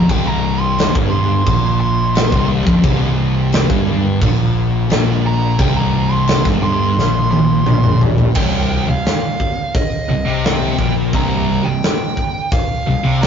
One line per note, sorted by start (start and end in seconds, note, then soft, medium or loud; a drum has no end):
0.09 0.91 C1 loud
0.09 0.94 C2 loud
0.09 0.27 G5 medium
0.09 kick loud
0.09 crash medium
0.27 0.60 A#5 loud
0.60 0.94 C6 medium
0.78 snare loud
0.78 crash medium
0.95 1.43 G1 loud
0.95 1.47 G2 medium
0.95 kick loud
1.10 1.78 C6 medium
1.46 2.29 A#1 medium
1.46 2.32 A#2 loud
1.46 kick loud
1.46 crash medium
1.81 2.48 C6 loud
2.15 snare loud
2.15 crash medium
2.32 2.64 C1 medium
2.32 2.66 C2 loud
2.32 kick loud
2.66 2.83 F1 medium
2.66 2.83 F2 loud
2.66 kick loud
2.83 3.66 C1 loud
2.83 3.68 C2 loud
2.83 kick loud
2.83 crash medium
3.52 snare loud
3.52 crash medium
3.69 4.18 G1 loud
3.69 4.20 G2 loud
3.69 kick loud
4.21 4.87 A#1 loud
4.21 4.88 A#2 loud
4.21 kick loud
4.21 crash medium
4.90 5.55 A#1 loud
4.90 5.58 A#2 loud
4.90 snare loud
4.90 crash medium
5.26 5.59 A#5 loud
5.58 6.42 C1 loud
5.58 6.44 C2 loud
5.58 5.77 G5 loud
5.58 kick loud
5.58 crash medium
5.77 6.12 A#5 loud
6.12 6.45 C6 loud
6.28 snare loud
6.28 crash medium
6.45 6.94 G1 loud
6.45 6.96 G2 loud
6.45 kick loud
6.45 snare soft
6.63 7.30 C6 loud
6.97 7.63 A#1 medium
6.97 7.65 A#2 loud
6.97 snare medium
7.31 7.99 C6 loud
7.31 high tom medium
7.66 8.31 A#1 medium
7.66 8.35 A#2 loud
7.66 mid tom loud
7.84 mid tom medium
8.01 floor tom loud
8.18 floor tom medium
8.35 8.84 C1 medium
8.35 8.87 C2 loud
8.35 8.89 G5 medium
8.35 kick loud
8.35 crash loud
8.87 9.04 C1 medium
8.87 9.06 C2 medium
8.87 9.78 F5 medium
9.05 snare loud
9.05 open hi-hat medium
9.40 kick medium
9.75 10.46 D#5 medium
9.75 kick loud
9.75 open hi-hat medium
10.07 10.24 C1 medium
10.07 10.27 C2 medium
10.25 10.74 C2 medium
10.25 10.77 C3 medium
10.44 10.93 G5 medium
10.44 snare loud
10.44 open hi-hat medium
10.78 11.10 A#1 medium
10.78 11.12 A#2 loud
10.78 kick medium
11.12 11.61 C1 loud
11.12 11.64 C2 loud
11.12 11.68 A#5 loud
11.12 kick loud
11.12 open hi-hat medium
11.64 11.81 C1 medium
11.64 11.83 C2 medium
11.64 12.52 G5 loud
11.83 snare loud
11.83 open hi-hat medium
12.17 kick medium
12.52 13.23 F5 medium
12.52 kick loud
12.52 open hi-hat medium
12.85 13.02 C1 medium
12.85 13.04 C2 medium
13.03 13.27 C2 loud
13.03 13.27 C3 medium
13.21 13.27 A#5 medium
13.21 snare loud
13.21 open hi-hat medium